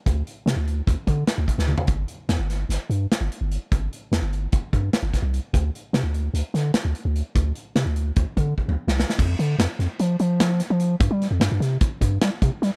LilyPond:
<<
  \new Staff \with { instrumentName = "Sub bass" } { \clef bass \time 9/8 \key g \mixolydian \tempo 4. = 99 d,8 r8 c16 d,8. d,16 r16 d8 r16 d,16 r16 d,8 r16 | g,,8 r8 e,16 g,,8. g,,16 r16 g,8 r16 g,,16 r16 g,,8 r16 | g,,8 r8 e,16 g,,8. g,,16 r16 g,8 r16 g,,16 r16 c,8 r16 | d,8 r8 c16 d,8. d,16 r16 d8 r16 d,16 r16 d,8 r16 |
d,8 r8 c16 d,8. d,16 r16 d8 r16 d,16 r16 c,8 r16 | f,8 d8 f,16 r16 f,16 r16 f8 f4~ f16 f8. | g,16 g8 f,16 g,16 g,16 c8 r8 g,8 g16 r16 c16 r16 g16 r16 | }
  \new DrumStaff \with { instrumentName = "Drums" } \drummode { \time 9/8 <hh bd>8 hh8 <hh sn>8 hh8 <hh bd>8 <hh bd>8 <hh sn>8 <hh bd>16 sn16 toml16 tomfh16 | <hh bd>8 hh8 <hh sn>8 <hh sn>8 <hh sn>8 hh8 <hh sn>8 hh8 hh8 | <hh bd>8 hh8 <hh sn>8 hh8 <hh bd>8 <hh bd>8 <hh sn>8 <hh bd sn>8 hh8 | <hh bd>8 hh8 <hh sn>8 hh8 hh8 <hh sn>8 <hh sn>8 hh8 hh8 |
<hh bd>8 hh8 <hh sn>8 hh8 <hh bd>8 <hh bd>8 bd16 tommh8 sn16 sn16 sn16 | <cymc bd>8 hh8 <hh sn>8 <hh sn>8 hh8 hh8 <hh sn>8 <hh sn>8 hh8 | <hh bd>8 <hh sn>8 <hh sn>8 <hh sn>8 <hh bd>8 <hh bd>8 <hh sn>8 <hh bd>8 <hh sn>8 | }
>>